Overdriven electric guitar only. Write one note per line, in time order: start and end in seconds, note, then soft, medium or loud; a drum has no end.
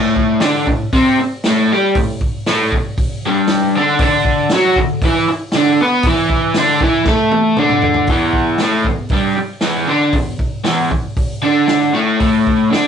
0.00 0.41 A2 loud
0.00 0.42 A3 loud
0.41 0.67 D3 loud
0.41 0.68 D4 loud
0.67 0.89 A2 medium
0.93 1.19 C3 medium
0.93 1.19 C4 loud
1.21 muted overdriven electric guitar stroke medium
1.46 1.71 A2 loud
1.46 1.71 A3 loud
1.72 1.96 G3 loud
1.72 1.97 G4 loud
1.97 2.17 A2 medium
2.48 2.73 A2 loud
2.48 2.73 A3 loud
2.76 muted overdriven electric guitar stroke medium
3.26 3.76 G2 loud
3.26 3.76 G3 loud
3.76 4.00 D3 medium
3.76 4.01 D4 loud
4.01 4.51 D3 medium
4.01 4.52 D4 loud
4.54 4.78 F#3 medium
4.54 4.78 F#4 loud
4.78 4.98 D3 medium
5.04 5.29 E3 medium
5.04 5.29 E4 loud
5.30 muted overdriven electric guitar stroke medium
5.55 5.79 D3 loud
5.55 5.80 D4 loud
5.81 6.05 B3 loud
5.81 6.06 B4 loud
6.07 6.56 E3 medium
6.07 6.57 E4 loud
6.58 6.82 D3 loud
6.58 6.82 D4 loud
6.82 7.07 E3 loud
6.82 7.07 E4 loud
7.08 7.58 A3 medium
7.08 7.58 A4 loud
7.58 8.09 D3 loud
7.58 8.09 D4 loud
8.09 8.60 E2 medium
8.09 8.61 E3 loud
8.61 8.86 A2 medium
8.61 8.86 A3 loud
8.87 9.08 E2 medium
9.12 9.37 G2 medium
9.12 9.38 G3 loud
9.38 muted overdriven electric guitar stroke medium
9.62 9.88 E2 medium
9.62 9.89 E3 loud
9.87 10.13 D3 medium
9.87 10.14 D4 loud
10.14 10.35 E2 medium
10.64 10.89 E2 loud
10.64 10.91 E3 loud
10.90 muted overdriven electric guitar stroke medium
11.42 11.93 D3 medium
11.42 11.94 D4 loud
11.94 12.19 A2 medium
11.94 12.20 A3 loud
12.20 12.71 A2 medium
12.20 12.71 A3 loud
12.71 12.87 D3 medium
12.71 12.87 D4 medium